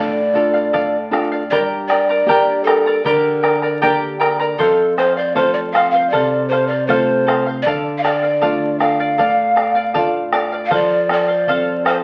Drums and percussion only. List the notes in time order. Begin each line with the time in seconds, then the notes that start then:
0.74 bombo low
1.13 bombo rim
1.52 bombo low
1.90 bombo rim
2.29 bombo low
2.67 bombo rim
3.05 bombo low
3.44 bombo rim
3.83 bombo low
4.21 bombo rim
4.60 bombo low
4.98 bombo rim
5.36 bombo low
5.75 bombo rim
6.13 bombo low
6.90 bombo low
7.28 bombo rim
7.66 bombo low
8.05 bombo rim
8.42 bombo low
8.80 bombo rim
9.19 bombo low
9.57 bombo rim
9.95 bombo low
10.33 bombo rim
10.71 bombo low
11.09 bombo rim
11.47 bombo low
11.86 bombo rim